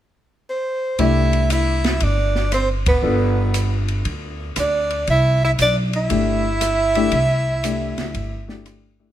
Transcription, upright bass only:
0.99 C2
2.01 G1
3.03 G1
4.06 D2
4.57 D2
5.08 C2
5.59 B1
6.10 G1
7.13 C2
7.99 C#2
8.14 G1

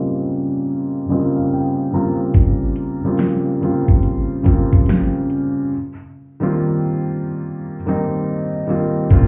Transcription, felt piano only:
Already playing: C#3 G3 A#3 C4 F4
1.09 C#3 G3 A#3 C4 F4 D#5
1.36 F5
1.53 G5
1.92 C#3 G3 A#3 C4 F4 A#5
3.04 C#3 G3 A#3 C4 F4
3.61 C#3 G3 A#3 C4 F4
4.43 C#3 G3 A#3 C4 F4
6.40 D#3 G3 A#3 C4 F4
7.86 D#3 G3 A#3 C4 D#4
8.67 D#3 G3 A#3 C4 F4
9.10 C#3 G3 A#3 C4 F4

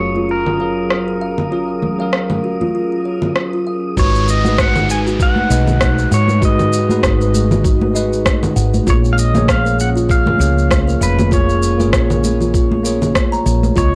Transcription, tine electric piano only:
Already playing: F#3 C#4 F4 A#4 F5
0.59 F#3 C#4 A#4 F5
1.51 F#3 C#4 F4 A#4
1.99 F#3 C#4 A#4 F5
3.97 G#3 D#4 F#4 B4
4.44 G#3 D#4 F#4 B4
5.49 G#3 D#4 F#4 B4
6.41 G#3 D#4 F#4 B4
6.88 G#3 D#4 F#4 B4
7.93 G#3 D#4 F#4 B4
8.87 A#3 F4 G#4 C#5
9.34 F3 A#3 G#4 C#5
10.38 A#3 F4 G#4 C#5
11.31 A#3 F4 G#4 C#5
11.78 A#3 F4 G#4 C#5
12.83 A#3 F4 G#4 C#5
13.76 C#3 B3 F4 D#5

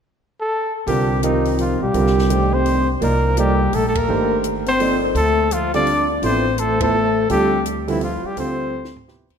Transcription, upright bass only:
0.87 C2
1.81 B1
1.94 C2
3.01 C2
3.73 A#1
4.08 G1
5.15 D2
6.22 A1
7.30 D2
8.24 muted upright bass stroke
8.37 D2

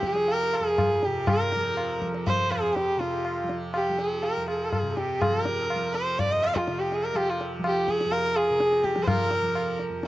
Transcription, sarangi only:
0.06 G#4
0.32 A#4
0.56 G#4
1.04 G4
1.29 A#4
2.27 C5
2.51 G#4
2.75 G4
3.00 F4
3.75 G4
3.99 G#4
4.23 A#4
4.49 G#4
4.97 G4
5.21 G#4
5.42 A#4
5.94 C5
6.19 D5
6.32 D#5
6.44 F5
6.56 F4
6.80 G4
6.94 G#4
7.04 A#4
7.17 G4
7.30 F4
7.67 G4
7.90 G#4
8.12 A#4
8.36 G#4
8.84 G4
9.03 A#4 C5

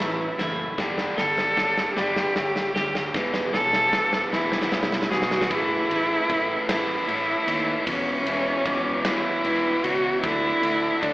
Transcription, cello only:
Already playing: E4
1.17 A4
1.96 G4
3.53 A4
4.32 E4
5.10 F#4
5.51 E4
6.69 E4
7.86 C#4
9.04 E4
9.84 F#4
10.22 E4
11.01 D4

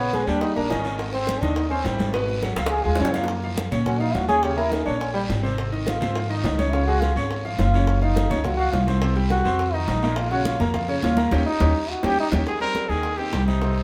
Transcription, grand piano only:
0.14 G#3 G#4 G#5
0.27 G3 G4 G5
0.56 A#3 A#4 A#5
0.71 D#3 D#4 D#5
0.85 D#3 D#4 D#5
1.14 C4 C5 C6
1.42 D#3 D#4 D#5
1.71 C4 C5 C6
1.85 G3 G4 G5
2.13 B2 B3 B4
2.43 F#3 F#4 F#5
2.57 F3 F4 F5
2.84 G#3 G#4 G#5
2.99 C#3 C#4 C#5
3.15 F3 F4 F5
3.44 F3 F4 F5
3.72 C#4 C#5 C#6
3.86 F#3 F#4 F#5
4.00 F3 F4 F5
4.28 C#4 C#5 C#6
4.43 C#3 C#4 C#5
4.57 A#3 A#4 A#5
4.86 C#4 C#5 C#6
5.14 G3 G4 G5
5.43 C3 C4 C5
5.72 D#3 D#4 D#5
6.01 C4 C5 C6
6.15 F3 F4 F5
6.29 D#3 D#4 D#5
6.58 C#4 C#5 C#6
6.73 C#3 C#4 C#5
6.88 G#3 G#4 G#5
7.16 C#4 C#5 C#6
7.45 F3 F4 F5
7.74 C#3 C#4 C#5
8.02 F3 F4 F5
8.30 C#4 C#5 C#6
8.44 F#3 F#4 F#5
8.59 F3 F4 F5
8.87 C4 C5 C6
9.02 C3 C4 C5
9.16 G3 G4 G5
9.45 C4 C5 C6
9.74 D#3 D#4 D#5
10.03 A#2 A#3 A#4
10.31 C#3 C#4 C#5
10.60 A#3 A#4 A#5
10.74 F3 F4 F5
10.88 C#3 C#4 C#5
11.17 A#3 A#4 A#5
11.32 C#4 D#4 G4
11.61 C#4 D#4 G4
12.04 C#4 D#4 G4
12.33 C#4 D#4 G4
12.60 C4 C5
12.90 D#3 D#4
13.18 C4 C5
13.32 G3 G4
13.61 C3 C4

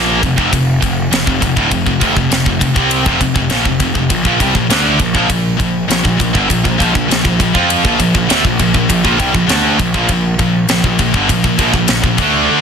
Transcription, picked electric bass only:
Already playing: A#1
0.23 F1
0.38 F1
0.53 F1
0.83 F1
1.14 F1
1.27 F1
1.42 F1
1.57 D1
1.72 F1
1.87 F1
2.02 F1
2.17 F1
2.31 F1
2.46 F1
2.61 F1
2.76 C2
3.06 F1
3.21 F1
3.35 F1
3.50 A#1
3.66 F1
3.80 F1
3.95 F1
4.10 A#1
4.25 A#1
4.40 C2
4.55 A#1
4.70 D2
5.00 A#1
5.15 A#1
5.30 A#1
5.60 A#1
5.89 A#1
6.05 A#1
6.20 A#1
6.35 G1
6.50 A#1
6.65 A#1
6.81 A#1
6.96 A#1
7.10 A#1
7.25 A#1
7.40 A#1
7.55 F2
7.85 A#1
7.99 A#1
8.15 A#1
8.31 D2
8.44 A#1
8.60 A#1
8.75 A#1
8.90 A#1
9.05 A#1
9.20 C2
9.34 A#1
9.50 D2
9.79 A#1
9.94 A#1
10.09 A#1
10.39 A#1
10.69 A#1
10.84 A#1
10.99 A#1
11.14 G1
11.29 A#1
11.44 A#1
11.59 A#1
11.74 A#1
11.89 A#1
12.04 A#1
12.19 D2

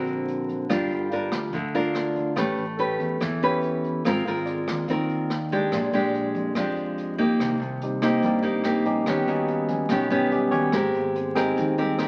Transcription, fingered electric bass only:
Already playing: A#1
0.70 G1
0.90 G1
1.32 D2
1.53 D2
2.37 A1
2.57 A1
3.00 E2
3.21 E2
4.05 G#1
4.25 G#1
4.67 D#2
4.88 D#2
5.72 A#1
5.93 A#1
6.35 F2
6.56 F2
7.39 C2
7.60 C2
8.22 G2
8.85 A#1
9.06 D#2
9.27 D#2
9.89 B1
10.52 D#2
10.73 G#1
10.94 G#1
11.57 D#2

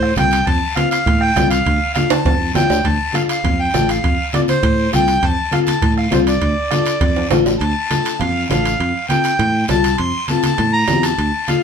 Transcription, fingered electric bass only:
Already playing: A2
0.17 C2
0.47 F2
1.06 A2
1.36 C2
1.66 D2
2.25 F2
2.40 F2
2.55 E2
2.70 D2
2.85 D2
3.44 F2
3.74 A1
4.04 F2
4.63 A2
4.93 C2
5.23 F2
5.82 A2
6.12 C2
6.42 D2
7.01 F2
7.31 A1
7.61 D2
8.21 F2
8.50 A1
8.80 F2
9.39 A2
9.69 C2
9.99 F2
10.59 A2
10.88 E2
11.18 D2

